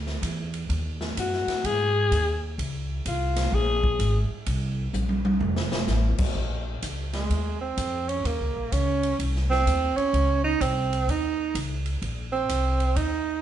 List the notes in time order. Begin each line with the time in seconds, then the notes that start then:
Already playing: D2
0.07 snare
0.22 E2, kick, hi-hat pedal, ride
0.54 ride
0.69 D#2, kick, ride
1.01 snare
1.17 F#2 F#4, kick, hi-hat pedal, ride
1.33 snare
1.47 muted upright bass stroke, snare, ride
1.64 G#2 G#4, kick, ride
2.11 D#2, kick, hi-hat pedal, ride
2.58 C#2, kick, ride
3.06 C2 F4, kick, hi-hat pedal, ride
3.36 snare, ride
3.52 A#1 G#4, kick
3.84 kick
3.99 G#1, kick, hi-hat pedal, ride
4.30 muted upright bass stroke
4.46 C2, kick, ride
4.93 A#1, hi-hat pedal, high tom
5.09 high tom
5.25 high tom
5.40 F1, floor tom
5.56 snare
5.72 snare
5.87 A1, snare, hi-hat pedal
6.18 muted upright bass stroke, kick, crash
6.35 A#1, kick
6.82 C#2, kick, hi-hat pedal, ride
7.13 G#3, snare, ride
7.30 D#2, kick, ride
7.61 C4
7.77 F2, kick, hi-hat pedal, ride
8.09 C#4, ride
8.24 D#2 A#3, kick, ride
8.40 C#2
8.56 A#1
8.72 C#2 C#4, kick, hi-hat pedal, ride
9.03 ride
9.19 C2, kick, ride
9.36 snare
9.50 C4, snare
9.66 D#2, kick, hi-hat pedal, ride
9.97 C#4, muted upright bass stroke, ride
10.13 C#2, kick, ride
10.44 D#4
10.60 C2 C4, kick, hi-hat pedal, ride
10.93 ride
11.08 D#2 D#4, kick, ride
11.55 C#2, kick, hi-hat pedal, ride
11.86 ride
12.02 A#1, kick, ride
12.32 C4
12.49 C2, kick, hi-hat pedal, ride
12.80 ride
12.96 D#2 D#4, kick, ride